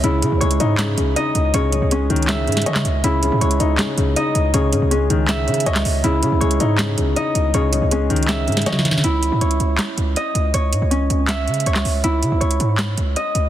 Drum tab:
HH |x-----------x-----------x-----x-----x-----------x-----------x-----------x-----------x-----------|x-----------x-----------x-----------x---x---x---x-----------x--x--x--x--x-----------x-----------|x-----------x-----------x-----x-----x-----------x-----------x-----------x-----------x-----------|x-----------x-----------x-----------x-----------x-----------x---x---x---x-----------o-----------|
CP |------------------------------------------------x-----------------------------------------------|------------------------------------------------x-----------------------------x-----------------|------------------------------------------------x-----------------------------------------------|------------------------------------------------x-----------------------------x-----------------|
SD |------------------------------------------------o-----------------------------------------------|------------------------------------------------o-----------------o-----------o-----------------|------------------------------------------------o-----------------------------------------------|------------------------------------------------o-----------------------------o-----------------|

HH |x-----------x-----------x-----x-----x-----------x-----------x-----------x-----------x-----------|x-----------x-----------x-----------x---x---x---x-----------x--x--x--x--x-----------x-----------|x-----------x-----------x-----x-----x-----------x-----------x-----------x-----------x-----------|x-----------x-----------x-----------x-----------x-----------x---x---x---x-----------o-----------|
CP |------------------------------------------------x-----------------------------------------------|------------------------------------------------x-----------------------------------------------|------------------------------------------------x-----------------------------------------------|------------------------------------------------x-----------------------------x-----------------|
SD |------------------------------------------------o-----------------------------------------------|------------------------------------------------o-----------------o-----o---o---o---o---o---o---|------------------------------------------------o-----------------------------------------------|------------------------------------------------o-----------------------------o-----------------|

HH |x-----------x-----------x-----x-----x-----------x-----------x-----------x-----------x-----------|
CP |------------------------------------------------x-----------------------------------------------|
SD |------------------------------------------------o-----------------------------------------------|